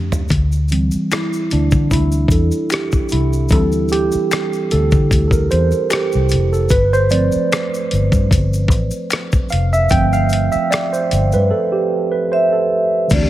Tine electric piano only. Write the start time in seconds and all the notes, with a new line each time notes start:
Already playing: F3 A3 C4 D4 G4
0.70 E3 G3 C4
1.12 E4
1.53 D4
1.92 E4
2.32 A4
2.72 G4
3.12 E4
3.51 E3 G3 C4 A4
3.92 G4
4.72 A4
5.28 A4
5.32 A#4
5.51 C5
5.91 G4
6.53 A4
6.71 B4
6.93 C5
7.10 F3 A3 C4 D5
9.50 F5
9.73 E5
9.90 F3 A3 C4 G5
10.13 F5
10.52 E5
10.71 D5
10.93 C5
11.34 B4
11.51 A4
11.72 G4
12.12 B4
12.32 C5
12.52 A4
13.08 E3 A3
13.12 C4 D4
13.16 F#4
13.23 G4